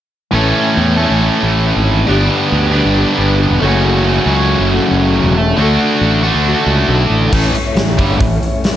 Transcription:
0.31 A1 A2 E3 A3 C#4 A4
0.36 E4 C#5
0.77 E2
0.97 A2 E3 A3 C#4 A4
1.10 A1
1.19 A3 C#4 E4 C#5
1.43 A1
1.63 A3 C#4 E4 C#5
1.76 G#1
2.06 G1 G2 D3 G3 B3 D4 G4
2.11 G4 B4
2.52 D2
2.72 G2 D3 G3 B3 D4 G4
2.85 G1
2.95 G3 D4 G4 B4
3.18 G1
3.38 G3 D4 G4 B4
3.50 E1
3.60 F#1 F#2 C#3 F#3 A3 C#4 F#4 A4
3.64 F#3 A3 F#4
4.26 C#2 F#2 C#3 F#3 A3 C#4 F#4
4.59 F#1
4.70 A3 C#4 F#4 A4
4.91 F#1
5.13 A3 C#4 F#4 A4
5.24 E1
5.56 D2 D3 A3 D4
5.60 F#4 A4
6.01 A1
6.23 A3 D4 F#4
6.27 D3
6.34 D2
6.45 A3 D4 F#4 A4
6.66 C#2
6.88 B1 A3 D4 F#4 A4
7.10 A1
7.32 A1 A2 E3 A3 C#4 E4 C#5, kick, crash
7.44 A3 C#4 E4 C#5
7.54 muted fingered electric bass stroke, muted distorted electric guitar stroke, open hi-hat
7.64 C#4 E4 C#5
7.68 A3
7.74 A1 A2 E3 A3 C#4 E4 C#5, snare, open hi-hat
7.96 G1 G2 D3 G3 A3 C#4 E4 C#5, kick, open hi-hat
8.07 C#4 E4 C#5
8.11 A3
8.20 A1 A2 E3, kick, open hi-hat
8.30 A3 C#4 E4 C#5
8.40 A3 C#4 E4, open hi-hat
8.44 C#5
8.52 A3 C#4 E4 C#5
8.63 A2 E3 A3 C#4 E4 C#5, snare, open hi-hat

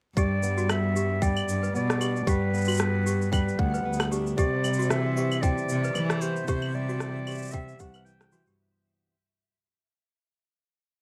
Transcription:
0.17 G2 G3 G4 D5, kick, cabasa
0.43 B3, cabasa
0.58 F#4, cabasa
0.69 B3 E5, cross-stick, cabasa, claves
0.96 G4, cabasa
1.22 G3 D5 G5, kick, cabasa
1.37 cabasa, claves
1.48 G2, cabasa
1.63 B4, cabasa
1.74 B2 B3 D5, cabasa
1.90 cross-stick, cabasa
2.01 D4 G4, cabasa, claves
2.16 cabasa
2.27 G2 G3 G4 B4, kick, cabasa
2.53 B3, cabasa
2.58 cabasa
2.61 cabasa
2.65 F#4, cabasa, claves
2.68 cabasa
2.72 cabasa
2.74 cabasa
2.77 B3, cross-stick, cabasa
3.06 G4, cabasa
3.22 cabasa
3.32 G3 B4 G5, kick, cabasa, claves
3.49 cabasa
3.59 D2 F#5, kick
3.74 B4, cabasa
3.85 D2 B3
3.93 cabasa
4.00 cross-stick, cabasa, claves
4.11 D4 G4, cabasa
4.27 cabasa
4.37 C3 G4 D5 E5, kick, cabasa
4.64 G3, cabasa, claves
4.73 cabasa
4.79 F#4, cabasa
4.82 cabasa
4.90 E3 E5, cross-stick, cabasa
5.17 G4, cabasa
5.32 cabasa, claves
5.42 C3 D5 G5, kick, cabasa
5.58 cabasa
5.69 C3, cabasa
5.84 B4, cabasa
5.95 E3, cabasa, claves
6.10 cross-stick, cabasa
6.21 B3 G4 C5, cabasa
6.36 cabasa
6.48 C3 G4 C5, kick, cabasa
6.62 claves
6.75 G3 D5
6.89 F#4, cabasa
7.00 E3, cross-stick, cabasa
7.27 G4, cabasa, claves
7.31 cabasa
7.35 cabasa
7.38 cabasa
7.42 cabasa
7.45 cabasa
7.48 cabasa
7.51 C3 E5, cabasa
7.53 G5, kick, cabasa
7.69 cabasa
7.79 C2 G4 F#5, kick, cabasa
7.94 B4, cabasa, claves
8.06 E3 G5, cabasa
8.21 C5, cross-stick, cabasa
8.32 E3 B3 F#4, cabasa
8.47 G2 G4, cabasa

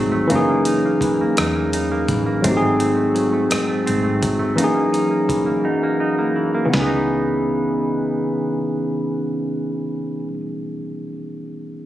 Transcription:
Already playing: G#1 G#2 F#3 A3 C4 D#4 G#4
0.12 A3
0.27 F#2 E3 A#3, closed hi-hat
0.31 F#1 C#4 D#4
0.35 G#4
0.49 A#3
0.65 D#4, closed hi-hat
0.85 A#3
1.01 E3, kick, closed hi-hat
1.21 A#3
1.37 E2 F#2 D#4, cross-stick, closed hi-hat
1.56 A#3
1.73 D#4, closed hi-hat
1.92 A#3
2.08 A1 E3, kick, closed hi-hat
2.26 A#3
2.42 G#1 G#2 F#3 A3 C4, kick, closed hi-hat
2.46 C4 D#4
2.50 G4
2.57 G#4
2.62 A3
2.80 C4, closed hi-hat
2.97 A3
3.15 F#3, closed hi-hat
3.33 A3
3.50 G#2 C4, muted fingered electric bass stroke, cross-stick, closed hi-hat
3.68 A3
3.86 G#1 C4, closed hi-hat
4.04 A3
4.22 F#3, kick, closed hi-hat
4.39 A3
4.56 F#2 E3 A#3 D#4, closed hi-hat
4.60 F#1 C#4 D#4
4.64 G#4
4.74 A#3
4.92 D#4, closed hi-hat
5.11 A#3
5.29 E3, kick, closed hi-hat
5.46 A#3
5.64 F#2 D#4
5.83 A#3
6.00 D#4
6.19 A#3
6.36 E3
6.54 A#3
6.65 C#3 E3
6.69 B3
6.73 C#2 E3 C#4, snare
6.78 B3 D#4
6.82 G#4
6.86 D#4

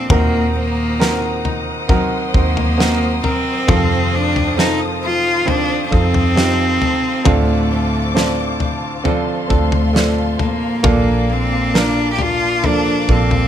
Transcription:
Already playing: A#2 F3 A#3 C4 D4 F4 A4 C5
0.09 D#2 A#2 D#3 C4 D#4 F#4 A#4 C5 F#5 A#5 D#6, kick, floor tom
0.14 A#3
0.55 A#3 C4
0.99 C4 D#4 F#4 A#4, snare
1.45 D#4, floor tom
1.88 F#3 C4 D#4 F#4 A#4 C6, kick, floor tom
2.34 D#2 A#3 C4 D#4 F#4 A#4 C5, kick
2.57 floor tom
2.78 C4 D#4 F#4 A#4, snare
3.23 C4 A#4, floor tom
3.67 F2 C3 D#3 F3 C4 F4 A4 F5 A5, kick, floor tom
4.13 C4 D4
4.36 floor tom
4.57 C4 D#4 F4 A4, snare
5.04 F4
5.45 D#3 C4 D4 F4 C5, floor tom
5.86 D4
5.91 F2 C4 D#4 F4 A4, kick
6.14 floor tom
6.36 C4 D#4 F4 G4, snare
6.82 A4, floor tom
7.24 D2 A2 D3 C4 D4 F4 A4 F5 D6, kick, floor tom
7.29 A3
7.71 A3 C4
8.14 C4 D4 F4 A4 C5, snare
8.60 D4, floor tom
9.04 F3 C4 D4 F4 A4 C6, floor tom
9.48 D2 C4 D4 F4 A4, kick
9.53 A3
9.72 floor tom
9.93 C4 D4 F4 A4, snare
10.39 A#3 A4, floor tom
10.83 A#1 A#2 A#3 D4 F4 A4 A5 D6, kick, floor tom
11.30 A#3 C4
11.74 A#3 D4 F4 A4 A#4, snare
12.13 G4
12.19 D4 F4, floor tom
12.64 F3 A#3 D4 F4 A4, floor tom
13.08 A#1 A#3 C4 D4 F4 A4, kick
13.31 floor tom

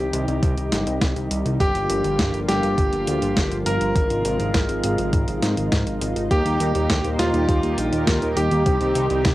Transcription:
Already playing: C3 D#3 G3 D#4 G4
0.00 C2
0.13 C2, closed hi-hat
0.28 C2, closed hi-hat
0.43 C2, kick, closed hi-hat
0.57 C2, closed hi-hat
0.72 G1, snare, closed hi-hat
0.87 C2, closed hi-hat
1.01 C2, kick, snare, closed hi-hat
1.16 C2, closed hi-hat
1.31 C2, closed hi-hat
1.45 C2, closed hi-hat
1.60 G1 D3 F3 A#3 F4 G4, kick, closed hi-hat
1.75 G1, closed hi-hat
1.90 G1, closed hi-hat
2.04 G1, closed hi-hat
2.19 G1, kick, snare, closed hi-hat
2.34 G1, closed hi-hat
2.48 G1 G4, snare, closed hi-hat
2.63 G1, closed hi-hat
2.78 G1, kick, closed hi-hat
2.93 G1, closed hi-hat
3.07 D2, closed hi-hat
3.22 G1, closed hi-hat
3.37 G1, kick, snare, closed hi-hat
3.51 G1, closed hi-hat
3.66 G1 A#4, closed hi-hat
3.81 G1, closed hi-hat
3.95 G#1 C3 G#3 D#4, kick, closed hi-hat
4.10 G#1, closed hi-hat
4.25 G#1, closed hi-hat
4.40 G#1, closed hi-hat
4.54 G#1, kick, snare, closed hi-hat
4.69 G#1, closed hi-hat
4.84 G#1, closed hi-hat
4.98 G#1, closed hi-hat
5.13 G#1, kick, closed hi-hat
5.28 G#1, closed hi-hat
5.42 G#2, snare, closed hi-hat
5.57 G#1, closed hi-hat
5.72 G#2, kick, snare, closed hi-hat
5.87 G#1, closed hi-hat
6.01 G#1, closed hi-hat
6.16 G#1, closed hi-hat
6.31 D#2 A#2 D#3 G3 A#3 D#4 G4, kick, closed hi-hat
6.45 D#2 A#3 D#4 G4, closed hi-hat
6.60 D#2, closed hi-hat
6.75 D#2 A#3 D#4 G4, closed hi-hat
6.90 D#2, kick, snare, closed hi-hat
7.04 D#2 A#3 D#4 C5, closed hi-hat
7.19 D#2 F4, snare, closed hi-hat
7.34 D#2 A#3 D#4 G4, closed hi-hat
7.48 D#2 A#3 D#4 G4, kick, closed hi-hat
7.63 D#2 A#3 D#4 G4, closed hi-hat
7.78 A#1, closed hi-hat
7.92 D#2 A#3 D#4 A#4, closed hi-hat
8.07 D#2, kick, snare, closed hi-hat
8.22 D#2 A#3 D#4 A#4, closed hi-hat
8.36 D#2 G4, closed hi-hat
8.51 D#2 A#3 D#4 G4, closed hi-hat
8.66 C2 C3 C4 D#4 G4, kick, closed hi-hat
8.81 C2 C4 D#4 G4, closed hi-hat
8.95 C2, closed hi-hat
9.10 C2 C4 D#4 G4, closed hi-hat
9.25 C2, kick, snare, closed hi-hat

